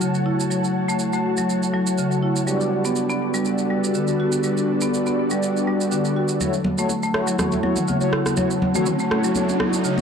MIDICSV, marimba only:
0, 0, Header, 1, 2, 480
1, 0, Start_track
1, 0, Tempo, 491803
1, 491, Time_signature, 4, 2, 24, 8
1, 9770, End_track
2, 0, Start_track
2, 0, Title_t, "Marimba"
2, 0, Program_c, 0, 12
2, 13, Note_on_c, 0, 49, 74
2, 82, Note_off_c, 0, 49, 0
2, 252, Note_on_c, 0, 64, 71
2, 322, Note_off_c, 0, 64, 0
2, 493, Note_on_c, 0, 54, 77
2, 562, Note_off_c, 0, 54, 0
2, 863, Note_on_c, 0, 57, 94
2, 921, Note_off_c, 0, 57, 0
2, 1105, Note_on_c, 0, 57, 90
2, 1202, Note_off_c, 0, 57, 0
2, 1344, Note_on_c, 0, 54, 98
2, 1447, Note_off_c, 0, 54, 0
2, 1694, Note_on_c, 0, 54, 95
2, 1763, Note_off_c, 0, 54, 0
2, 1933, Note_on_c, 0, 49, 76
2, 2002, Note_off_c, 0, 49, 0
2, 2172, Note_on_c, 0, 64, 72
2, 2242, Note_off_c, 0, 64, 0
2, 2411, Note_on_c, 0, 55, 77
2, 2481, Note_off_c, 0, 55, 0
2, 2781, Note_on_c, 0, 59, 96
2, 2840, Note_off_c, 0, 59, 0
2, 3021, Note_on_c, 0, 59, 92
2, 3120, Note_off_c, 0, 59, 0
2, 3262, Note_on_c, 0, 55, 98
2, 3366, Note_off_c, 0, 55, 0
2, 3616, Note_on_c, 0, 55, 93
2, 3684, Note_off_c, 0, 55, 0
2, 3856, Note_on_c, 0, 50, 77
2, 3924, Note_off_c, 0, 50, 0
2, 4097, Note_on_c, 0, 66, 73
2, 4164, Note_off_c, 0, 66, 0
2, 4333, Note_on_c, 0, 55, 77
2, 4402, Note_off_c, 0, 55, 0
2, 4704, Note_on_c, 0, 59, 94
2, 4762, Note_off_c, 0, 59, 0
2, 4945, Note_on_c, 0, 59, 89
2, 5042, Note_off_c, 0, 59, 0
2, 5186, Note_on_c, 0, 55, 98
2, 5288, Note_off_c, 0, 55, 0
2, 5536, Note_on_c, 0, 55, 92
2, 5604, Note_off_c, 0, 55, 0
2, 5774, Note_on_c, 0, 50, 75
2, 5843, Note_off_c, 0, 50, 0
2, 6016, Note_on_c, 0, 66, 71
2, 6084, Note_off_c, 0, 66, 0
2, 6255, Note_on_c, 0, 54, 78
2, 6323, Note_off_c, 0, 54, 0
2, 6625, Note_on_c, 0, 57, 94
2, 6682, Note_off_c, 0, 57, 0
2, 6862, Note_on_c, 0, 57, 92
2, 6960, Note_off_c, 0, 57, 0
2, 7100, Note_on_c, 0, 54, 97
2, 7204, Note_off_c, 0, 54, 0
2, 7451, Note_on_c, 0, 54, 96
2, 7521, Note_off_c, 0, 54, 0
2, 7693, Note_on_c, 0, 49, 77
2, 7762, Note_off_c, 0, 49, 0
2, 7933, Note_on_c, 0, 64, 73
2, 8002, Note_off_c, 0, 64, 0
2, 8171, Note_on_c, 0, 54, 79
2, 8241, Note_off_c, 0, 54, 0
2, 8545, Note_on_c, 0, 57, 100
2, 8602, Note_off_c, 0, 57, 0
2, 8785, Note_on_c, 0, 57, 92
2, 8882, Note_off_c, 0, 57, 0
2, 9023, Note_on_c, 0, 54, 99
2, 9126, Note_off_c, 0, 54, 0
2, 9371, Note_on_c, 0, 54, 97
2, 9441, Note_off_c, 0, 54, 0
2, 9612, Note_on_c, 0, 49, 76
2, 9682, Note_off_c, 0, 49, 0
2, 9770, End_track
0, 0, End_of_file